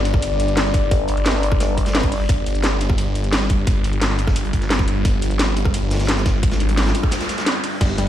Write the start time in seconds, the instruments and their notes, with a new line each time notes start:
Already playing: detuned saw bass G1, ambient pad G3 D4 D5
0.05 closed hi-hat
0.14 kick, cross-stick
0.22 closed hi-hat
0.40 closed hi-hat
0.48 closed hi-hat
0.57 snare, closed hi-hat
0.65 snare
0.74 kick, closed hi-hat
0.91 wobble bass G1, kick, closed hi-hat
1.08 closed hi-hat
1.17 closed hi-hat
1.25 snare, closed hi-hat
1.35 cross-stick, snare
1.43 closed hi-hat
1.52 kick, cross-stick
1.60 snare, closed hi-hat
1.77 kick, closed hi-hat
1.86 snare, closed hi-hat
1.95 snare, closed hi-hat
2.03 kick, closed hi-hat
2.12 closed hi-hat, open hi-hat
2.29 detuned saw bass G1, ambient pad F4, kick, closed hi-hat
2.46 closed hi-hat
2.55 closed hi-hat
2.63 snare, closed hi-hat
2.72 cross-stick
2.80 closed hi-hat
2.90 kick, cross-stick
2.98 closed hi-hat
3.15 closed hi-hat
3.24 closed hi-hat
3.32 snare, closed hi-hat
3.41 snare
3.49 kick, closed hi-hat
3.67 detuned saw bass G1, kick, closed hi-hat
3.84 closed hi-hat
3.93 closed hi-hat
4.02 snare, closed hi-hat
4.10 cross-stick, snare
4.19 closed hi-hat
4.27 kick, cross-stick, snare
4.36 closed hi-hat
4.45 closed hi-hat
4.53 kick, closed hi-hat
4.62 snare, closed hi-hat
4.70 snare, closed hi-hat
4.79 kick, snare
4.88 closed hi-hat
5.05 detuned saw bass G1, kick, closed hi-hat
5.22 closed hi-hat
5.31 closed hi-hat
5.39 snare, closed hi-hat
5.48 cross-stick
5.57 closed hi-hat
5.65 kick, cross-stick
5.74 closed hi-hat
5.90 snare, closed hi-hat
5.95 snare, closed hi-hat
5.99 snare, closed hi-hat
6.04 snare, closed hi-hat
6.08 snare, closed hi-hat
6.17 snare, closed hi-hat
6.26 kick, snare, closed hi-hat
6.43 detuned saw bass G#1, kick, closed hi-hat, noise sweep
6.51 snare, closed hi-hat
6.60 closed hi-hat
6.69 closed hi-hat
6.77 snare, closed hi-hat
6.85 cross-stick, snare, closed hi-hat
6.95 closed hi-hat
7.03 kick, cross-stick
7.11 snare, closed hi-hat
7.20 snare, closed hi-hat
7.29 snare, closed hi-hat
7.38 snare, closed hi-hat
7.46 snare, closed hi-hat
7.64 closed hi-hat, open hi-hat
7.81 detuned saw bass G1, synth arpeggio sound G3, ambient pad C5, kick, closed hi-hat, crash
7.98 synth arpeggio sound G3, closed hi-hat